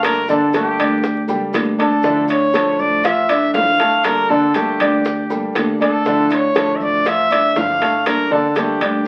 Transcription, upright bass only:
0.00 0.72 G1 medium
0.78 1.25 D2 medium
1.28 1.52 C#2 medium
1.54 2.73 D2 medium
2.79 3.50 A1 medium
3.54 4.73 G1 medium
4.81 5.51 D2 medium
5.55 6.74 D2 medium
6.79 7.51 A1 medium
7.56 8.74 G1 medium
8.81 9.07 D2 medium

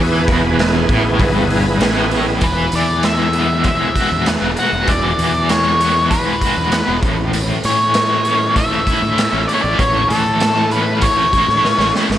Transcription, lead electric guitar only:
2.44 2.75 B4 medium
2.75 3.05 D5 medium
3.05 3.67 E5 medium
3.68 4.24 E5 medium
4.59 4.90 F#5 medium
4.89 5.50 D5 medium
5.51 6.07 C#5 medium
6.10 6.98 B4 medium
7.65 8.53 C#5 loud
8.57 9.44 E5 medium
9.48 9.54 D5 medium
9.54 9.61 C#5 medium
9.62 9.78 D5 medium
9.80 10.11 C#5 medium
10.08 10.72 A4 medium
10.72 11.03 B4 medium
11.03 11.90 C#5 medium

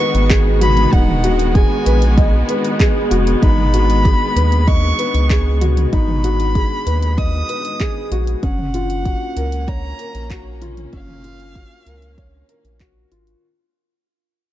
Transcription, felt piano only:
0.00 0.93 D#4 medium
0.00 0.61 F#4 medium
0.00 0.30 G#4 medium
0.00 1.86 B4 medium
0.00 2.18 D#5 medium
0.30 0.48 G#4 loud
0.61 0.79 F#4 medium
0.93 1.22 D#4 medium
1.24 1.42 F#4 medium
1.55 1.73 G#4 medium
1.86 2.16 B4 medium
2.18 2.47 D#5 medium
2.49 2.67 B4 medium
2.80 2.98 G#4 loud
3.11 3.29 F#4 medium
3.43 3.72 D#4 medium
3.74 4.04 F#4 medium
4.05 4.23 G#4 medium
4.36 4.66 B4 medium
4.68 4.97 D#5 medium
4.99 5.17 B4 medium
5.30 5.48 G#4 loud
5.61 5.79 F#4 medium
5.93 6.22 D#4 medium
6.24 6.42 F#4 medium
6.55 6.73 G#4 medium
6.87 7.16 B4 medium
7.18 7.48 D#5 medium
7.49 7.67 B4 medium
7.80 7.98 G#4 loud
8.12 8.30 F#4 medium
8.43 8.73 C#4 medium
8.74 9.04 F4 medium
9.06 9.23 F#4 medium
9.37 9.66 A#4 medium
9.68 9.98 C#5 medium
9.99 10.17 A#4 medium
10.31 10.48 F#4 loud
10.62 10.79 F4 loud
10.93 11.23 C#4 medium
11.24 11.42 F4 medium
11.56 11.73 F#4 medium
11.87 12.16 A#4 medium
12.18 12.48 C#5 medium
12.49 12.67 A#4 medium
12.80 12.98 F#4 loud
13.12 13.29 F4 loud

